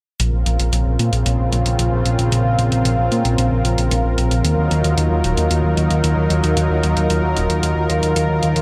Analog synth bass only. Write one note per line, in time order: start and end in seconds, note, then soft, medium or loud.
0.20 0.31 A#1 loud
0.33 0.45 A#1 medium
0.46 0.58 A#1 medium
0.60 0.71 A#1 medium
0.73 0.84 A#1 medium
0.86 0.98 A#1 medium
0.99 1.11 A#2 medium
1.13 1.24 A#1 medium
1.26 1.37 A#1 medium
1.39 1.51 A#1 medium
1.53 1.64 A#1 medium
1.66 1.77 A#1 medium
1.79 1.91 A#1 loud
1.92 2.04 A#1 medium
2.06 2.17 A#1 medium
2.19 2.30 A#1 medium
2.32 2.44 A#1 loud
2.45 2.57 A#1 medium
2.59 2.70 A#1 medium
2.72 2.83 A#1 medium
2.85 2.97 A#1 medium
2.98 3.10 A#1 medium
3.12 3.23 A#2 medium
3.25 3.37 A#1 medium
3.38 3.50 A#1 medium
3.52 3.63 A#1 medium
3.65 3.76 A#1 medium
3.78 3.90 A#1 medium
3.91 4.03 A#1 loud
4.05 4.16 A#1 medium
4.18 4.29 A#1 medium
4.31 4.43 A#1 medium
4.44 4.56 D#2 loud
4.58 4.69 D#2 medium
4.71 4.83 D#2 medium
4.84 4.96 D#2 medium
4.98 5.09 D#2 medium
5.11 5.22 D#2 medium
5.24 5.36 D#1 medium
5.38 5.49 D#2 medium
5.51 5.62 D#2 medium
5.64 5.76 D#2 medium
5.77 5.89 D#2 medium
5.91 6.02 D#2 medium
6.04 6.15 D#2 medium
6.17 6.29 D#2 medium
6.30 6.42 D#2 medium
6.44 6.55 D#2 medium
6.57 6.68 D#2 loud
6.70 6.82 D#2 medium
6.84 6.95 D#2 medium
6.97 7.08 D#2 medium
7.10 7.22 D#2 medium
7.23 7.35 D#2 medium
7.37 7.48 D#1 medium
7.50 7.61 D#2 medium
7.63 7.75 D#2 medium
7.76 7.88 D#2 medium
7.90 8.01 D#2 medium
8.03 8.14 D#2 medium
8.16 8.28 D#2 loud
8.29 8.41 D#2 medium
8.43 8.54 D#2 medium
8.56 8.62 D#2 medium